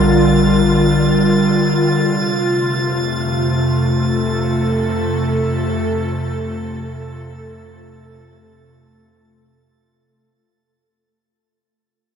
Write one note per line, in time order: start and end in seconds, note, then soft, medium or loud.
0.00 1.96 A#1 medium
0.00 2.00 D3 medium
0.00 2.02 G3 medium
0.00 10.28 F4 medium
0.00 2.00 A#4 medium
0.00 10.31 A6 medium
2.00 10.23 F2 medium
2.00 10.28 C3 medium
2.24 10.28 A3 medium
3.40 10.29 A4 medium